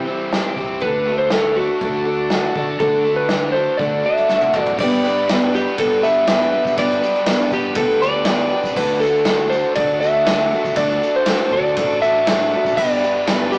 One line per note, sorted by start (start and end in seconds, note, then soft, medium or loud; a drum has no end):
0.00 0.80 E3 medium
0.00 0.82 G3 medium
0.00 0.55 G4 medium
0.07 0.56 C4 medium
0.07 0.34 E4 soft
0.07 0.33 G4 medium
0.11 0.33 C4 soft
0.32 0.58 G3 medium
0.32 0.58 C4 medium
0.32 0.59 E4 medium
0.32 0.58 G4 medium
0.32 snare loud
0.32 closed hi-hat medium
0.56 0.78 C2 medium
0.56 0.82 C4 medium
0.56 0.83 G4 medium
0.56 kick medium
0.60 0.84 C4 soft
0.60 0.84 E4 medium
0.80 1.68 D2 loud
0.80 1.30 D3 medium
0.80 4.51 A3 medium
0.80 4.60 D4 medium
0.80 4.76 F#4 medium
0.80 4.70 A4 medium
0.80 1.18 B4 loud
0.80 kick medium
0.80 closed hi-hat medium
0.84 1.08 D3 medium
0.84 1.09 A3 medium
0.84 1.09 D4 medium
0.84 1.08 F#4 medium
0.84 1.08 A4 medium
1.07 1.55 A3 medium
1.07 1.33 D4 soft
1.07 1.33 F#4 soft
1.07 1.33 A4 medium
1.18 1.30 C5 medium
1.30 1.80 D3 medium
1.30 1.57 A3 medium
1.30 1.57 D4 medium
1.30 1.57 F#4 medium
1.30 1.57 A4 medium
1.30 snare loud
1.30 closed hi-hat medium
1.35 1.55 A4 medium
1.56 2.81 A3 medium
1.56 1.82 D4 soft
1.56 2.52 F#4 medium
1.56 1.83 F#4 soft
1.56 1.82 A4 medium
1.81 2.46 D2 medium
1.81 2.07 D3 medium
1.81 2.07 A3 medium
1.81 2.06 D4 medium
1.81 2.05 F#4 medium
1.81 2.04 A4 medium
1.81 kick medium
1.81 closed hi-hat medium
2.05 2.31 D4 soft
2.05 2.32 F#4 soft
2.05 2.31 A4 soft
2.30 2.56 A3 medium
2.30 2.57 D4 medium
2.30 2.56 F#4 medium
2.30 2.55 A4 medium
2.30 snare loud
2.30 closed hi-hat medium
2.55 2.77 D3 medium
2.55 2.79 D4 soft
2.55 2.80 F#4 medium
2.55 2.80 A4 medium
2.55 kick medium
2.79 3.05 D3 medium
2.79 3.67 D3 medium
2.79 3.05 A3 medium
2.79 3.05 D4 medium
2.79 3.04 F#4 medium
2.79 3.16 A4 medium
2.79 3.03 A4 medium
2.79 kick loud
2.79 closed hi-hat medium
3.04 3.52 A3 medium
3.04 3.28 D4 soft
3.04 3.29 F#4 soft
3.04 3.30 A4 medium
3.16 3.52 B4 medium
3.29 3.77 D3 medium
3.29 3.55 A3 medium
3.29 3.54 D4 medium
3.29 3.54 F#4 medium
3.29 3.53 A4 medium
3.29 snare loud
3.29 closed hi-hat medium
3.52 4.78 A3 medium
3.52 3.78 D4 medium
3.52 3.78 F#4 medium
3.52 3.78 A4 medium
3.52 3.80 C5 medium
3.77 4.04 D3 medium
3.77 4.01 D3 loud
3.77 4.05 A3 medium
3.77 4.04 D4 medium
3.77 4.04 F#4 medium
3.77 4.02 A4 medium
3.77 4.25 D5 medium
3.77 kick loud
3.77 closed hi-hat medium
4.04 4.29 D4 soft
4.04 4.29 F#4 soft
4.04 4.29 A4 medium
4.04 4.62 E5 medium
4.17 snare soft
4.29 4.55 A3 medium
4.29 4.55 D4 medium
4.29 4.55 F#4 medium
4.29 4.55 A4 medium
4.29 snare medium
4.41 high tom medium
4.49 4.71 G3 medium
4.49 4.72 A3 medium
4.53 4.76 A1 medium
4.53 4.74 B3 medium
4.53 4.77 D4 medium
4.53 4.81 A4 medium
4.53 mid tom medium
4.58 4.75 C4 medium
4.58 4.82 D4 medium
4.58 4.77 D4 medium
4.58 4.81 F#4 medium
4.62 4.78 E4 medium
4.62 4.80 D5 medium
4.66 4.79 F4 medium
4.66 4.78 G4 medium
4.66 floor tom medium
4.71 4.82 A4 medium
4.71 4.79 B4 medium
4.77 5.66 G1 loud
4.77 5.28 G3 medium
4.77 8.74 B3 medium
4.77 5.06 D4 loud
4.77 8.74 D4 medium
4.77 8.74 G4 medium
4.77 8.74 B4 medium
4.77 5.03 B4 loud
4.77 4.85 C5 medium
4.77 5.57 D5 loud
4.77 kick loud
4.77 crash loud
4.77 tambourine soft
4.82 5.06 G2 medium
4.82 5.06 D3 medium
4.82 5.06 G3 medium
4.82 5.06 B3 loud
4.82 5.05 D4 medium
4.82 5.04 G4 loud
4.91 snare soft
5.04 5.29 G3 soft
5.04 5.30 B3 soft
5.04 5.30 D4 soft
5.04 5.30 G4 medium
5.04 5.31 B4 medium
5.04 tambourine medium
5.18 tambourine soft
5.29 5.55 G2 medium
5.29 5.55 D3 medium
5.29 5.55 G3 medium
5.29 5.55 B3 loud
5.29 5.54 D4 medium
5.29 5.53 G4 medium
5.29 5.52 B4 loud
5.29 snare loud
5.29 ride bell medium
5.29 tambourine medium
5.42 tambourine soft
5.53 5.78 G3 medium
5.53 5.78 B3 medium
5.53 5.80 D4 soft
5.53 5.79 G4 medium
5.53 6.01 B4 medium
5.53 tambourine medium
5.68 tambourine soft
5.78 6.54 G1 medium
5.78 6.03 G3 medium
5.78 6.03 B3 medium
5.78 6.02 D4 medium
5.78 6.01 G4 medium
5.78 6.05 A4 medium
5.78 kick loud
5.78 ride bell medium
5.78 tambourine soft
6.02 6.27 G3 soft
6.02 6.27 B3 soft
6.02 6.27 D4 soft
6.02 6.28 G4 medium
6.02 6.29 B4 medium
6.02 6.74 E5 medium
6.02 tambourine medium
6.18 tambourine soft
6.27 6.53 G2 medium
6.27 6.53 D3 medium
6.27 6.53 G3 medium
6.27 6.53 B3 medium
6.27 6.52 D4 medium
6.27 6.51 G4 loud
6.27 6.79 B4 loud
6.27 snare loud
6.27 ride bell medium
6.27 tambourine loud
6.41 snare soft
6.52 6.77 G3 soft
6.52 6.77 B3 medium
6.52 6.77 D4 medium
6.52 6.78 G4 medium
6.52 tambourine soft
6.65 6.76 G1 medium
6.65 kick medium
6.65 tambourine medium
6.77 7.00 G1 loud
6.77 7.03 G2 medium
6.77 7.03 D3 medium
6.77 7.03 G3 medium
6.77 7.02 B3 medium
6.77 7.02 D4 medium
6.77 7.01 G4 medium
6.77 7.00 B4 loud
6.77 7.56 D5 loud
6.77 kick medium
6.77 ride bell medium
6.90 snare soft
7.01 7.26 G3 soft
7.01 7.27 B3 soft
7.01 7.27 D4 soft
7.01 7.28 G4 medium
7.01 7.29 B4 medium
7.01 tambourine medium
7.15 snare soft
7.26 7.53 G2 medium
7.26 7.53 D3 medium
7.26 7.53 G3 medium
7.26 7.52 B3 medium
7.26 7.52 D4 medium
7.26 7.50 G4 loud
7.26 7.50 B4 medium
7.26 snare loud
7.26 ride bell medium
7.26 tambourine loud
7.51 7.76 G1 medium
7.51 7.75 G3 soft
7.51 7.76 B3 medium
7.51 7.76 D4 medium
7.51 7.77 G4 medium
7.51 7.79 G4 medium
7.51 7.99 B4 medium
7.51 kick medium
7.51 tambourine medium
7.65 tambourine soft
7.75 8.53 D2 medium
7.75 8.02 G3 medium
7.75 8.02 B3 medium
7.75 8.01 D4 medium
7.75 8.01 G4 medium
7.75 8.03 A4 loud
7.75 kick loud
7.75 ride bell medium
8.01 8.26 G3 soft
8.01 8.26 B3 soft
8.01 8.26 D4 medium
8.01 8.26 G4 medium
8.01 8.26 B4 medium
8.01 8.80 D5 medium
8.01 tambourine medium
8.15 tambourine soft
8.25 8.52 G2 medium
8.25 8.52 D3 medium
8.25 8.53 G3 medium
8.25 8.52 B3 loud
8.25 8.52 D4 medium
8.25 8.52 G4 medium
8.25 8.76 B4 loud
8.25 snare loud
8.25 ride bell medium
8.25 tambourine loud
8.53 8.78 G3 soft
8.53 8.78 B3 soft
8.53 8.77 D4 medium
8.53 8.78 G4 medium
8.53 tambourine soft
8.63 8.75 C2 medium
8.63 kick medium
8.63 tambourine medium
8.75 9.63 D2 loud
8.75 9.03 D3 medium
8.75 9.03 A3 medium
8.75 12.74 A3 medium
8.75 9.03 D4 loud
8.75 12.74 D4 medium
8.75 9.01 F#4 medium
8.75 9.00 A4 medium
8.75 9.03 B4 loud
8.75 kick loud
8.75 crash loud
8.79 12.74 F#4 medium
8.79 12.75 A4 medium
9.00 9.26 D4 soft
9.00 9.27 F#4 soft
9.00 9.53 A4 medium
9.00 9.27 A4 medium
9.00 tambourine medium
9.16 tambourine soft
9.25 9.53 D3 medium
9.25 9.53 A3 medium
9.25 9.53 D4 medium
9.25 9.52 F#4 medium
9.25 9.51 A4 medium
9.25 snare loud
9.25 ride bell medium
9.25 tambourine loud
9.40 tambourine soft
9.49 9.76 F#4 medium
9.49 9.77 A4 medium
9.49 9.75 C5 medium
9.49 tambourine medium
9.55 9.76 D4 soft
9.65 tambourine soft
9.75 10.53 D2 medium
9.75 10.02 A3 medium
9.75 10.03 D4 medium
9.75 10.01 F#4 medium
9.75 10.00 A4 medium
9.75 10.00 D5 loud
9.75 kick loud
9.75 ride bell medium
10.01 10.25 D4 soft
10.01 10.26 F#4 soft
10.01 10.26 A4 medium
10.01 10.77 E5 loud
10.01 tambourine medium
10.26 10.52 D3 medium
10.26 10.52 A3 medium
10.26 10.52 D4 medium
10.26 10.51 F#4 medium
10.26 10.50 A4 medium
10.26 snare loud
10.26 ride bell medium
10.26 tambourine medium
10.40 snare soft
10.51 10.77 D4 soft
10.51 10.76 F#4 soft
10.51 10.77 A4 medium
10.51 tambourine soft
10.64 10.76 D2 medium
10.64 kick medium
10.64 tambourine medium
10.76 10.99 D2 loud
10.76 11.02 D3 medium
10.76 11.03 A3 medium
10.76 11.03 D4 medium
10.76 11.02 F#4 medium
10.76 11.00 A4 loud
10.76 11.16 D5 loud
10.76 kick medium
10.76 ride bell medium
10.89 snare soft
10.89 tambourine soft
11.02 11.27 D4 soft
11.02 11.27 F#4 soft
11.02 11.27 A4 medium
11.02 tambourine medium
11.16 11.54 C5 loud
11.16 tambourine soft
11.26 11.53 D3 medium
11.26 11.53 A3 medium
11.26 11.53 D4 medium
11.26 11.52 F#4 medium
11.26 11.52 A4 medium
11.26 snare loud
11.26 ride bell medium
11.26 tambourine medium
11.51 11.78 D2 medium
11.51 11.77 D4 soft
11.51 11.78 F#4 medium
11.51 11.78 A4 medium
11.51 12.01 D5 medium
11.51 kick medium
11.67 tambourine soft
11.77 12.53 A1 medium
11.77 12.03 A3 medium
11.77 12.03 D4 medium
11.77 12.02 F#4 medium
11.77 12.01 A4 medium
11.77 kick loud
11.77 ride bell medium
11.77 tambourine soft
11.92 tambourine soft
12.02 12.27 D4 soft
12.02 12.27 F#4 soft
12.02 12.28 A4 medium
12.02 12.77 E5 medium
12.02 tambourine medium
12.17 tambourine soft
12.27 12.53 D3 medium
12.27 12.53 A3 medium
12.27 12.53 D4 medium
12.27 12.53 F#4 medium
12.27 12.52 A4 medium
12.27 snare loud
12.27 ride bell medium
12.27 tambourine loud
12.40 snare soft
12.53 12.79 D4 soft
12.53 12.79 F#4 medium
12.53 12.78 A4 medium
12.53 tambourine soft
12.65 12.76 A1 medium
12.65 kick medium
12.65 tambourine medium
12.75 13.58 G1 medium
12.75 13.03 G2 medium
12.75 13.04 D3 medium
12.75 13.26 G3 medium
12.75 13.58 B3 medium
12.75 13.58 D4 medium
12.75 13.58 G4 medium
12.75 13.58 B4 medium
12.75 13.00 B4 loud
12.75 13.55 D5 loud
12.75 kick medium
12.75 crash medium
12.80 13.04 G3 medium
12.80 13.04 B3 medium
12.80 13.03 D4 medium
12.80 13.02 G4 loud
13.01 13.28 D4 soft
13.01 13.28 G4 medium
13.01 13.29 B4 medium
13.01 tambourine medium
13.05 13.28 G3 soft
13.05 13.28 B3 soft
13.18 tambourine soft
13.27 13.53 G2 medium
13.27 13.53 D3 medium
13.27 13.54 G3 medium
13.27 13.53 B3 medium
13.27 13.53 D4 medium
13.27 13.51 G4 medium
13.27 13.50 B4 loud
13.27 snare loud
13.27 ride bell medium
13.27 tambourine medium
13.51 13.58 B3 soft
13.51 13.58 D4 medium
13.51 13.58 G4 medium
13.51 13.58 B4 medium
13.51 tambourine medium
13.55 13.58 G3 medium